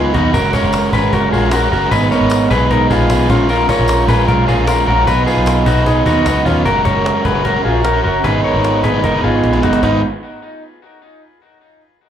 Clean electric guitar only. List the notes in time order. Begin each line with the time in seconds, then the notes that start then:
Already playing: F4 G#4
0.14 D#4 F#4
0.34 F#4 A#4
0.53 A#4 C#5
0.93 G#4 B4
1.13 F#4 A#4
1.32 F4 G#4
1.53 F#4 A#4
1.72 F#4 A#4
1.91 G#4 B4
2.11 A#4 C#5
2.51 G#4 B4
2.71 D#4 A#4
2.90 F4 G#4
3.30 C#4 F4
3.50 F4 A#4
3.69 A#4 C#5
4.09 G#4 B4
4.28 F4 A#4
4.48 F4 G#4
4.68 F4 A#4
4.87 F#4 A#4
5.07 F#4 B4
5.27 F4 G#4
5.66 D#4 F#4
5.86 D#4 G#4
6.06 D#4 F#4
6.45 C#4 F4
6.65 F#4 A#4
6.85 A#4 C#5
7.25 G#4 B4
7.45 F#4 A#4
7.65 F4 G#4
7.84 F#4 A#4
8.04 F#4 A#4
8.24 G#4 B4
8.44 A#4 C#5
8.84 G#4 B4
9.04 D#4 A#4
9.24 F4 G#4
9.63 D#4 F#4
9.83 D#4